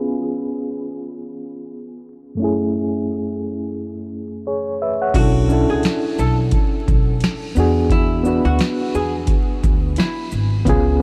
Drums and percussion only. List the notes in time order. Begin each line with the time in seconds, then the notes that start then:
5.14 kick, closed hi-hat, crash
5.50 shaker
5.83 snare, closed hi-hat
6.19 shaker
6.51 kick, closed hi-hat
6.88 kick, closed hi-hat, shaker
7.20 snare, closed hi-hat
7.56 shaker
7.90 kick, closed hi-hat
8.25 shaker
8.59 snare, closed hi-hat
8.95 shaker
9.27 kick, closed hi-hat
9.64 kick, closed hi-hat, shaker
9.96 snare, closed hi-hat
10.32 shaker
10.66 kick, closed hi-hat